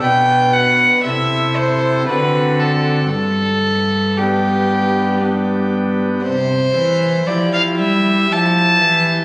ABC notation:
X:1
M:3/4
L:1/16
Q:1/4=58
K:G
V:1 name="Violin"
g2 f2 e2 c2 B2 A2 | A4 G6 z2 | [K:C] c4 d f e2 a4 |]
V:2 name="Pipe organ"
[DB]4 [CEA]4 [CDF]4 | z4 [B,DG]4 [B,DG]4 | [K:C] z4 [EG]4 [EG]4 |]
V:3 name="Pipe organ" clef=bass
B,,4 C,4 D,4 | G,,12 | [K:C] C,2 E,2 F,2 G,2 F,2 E,2 |]
V:4 name="Cello" clef=bass
B,,4 C,4 D,4 | G,,12 | [K:C] C,2 E,2 F,2 G,2 F,2 E,2 |]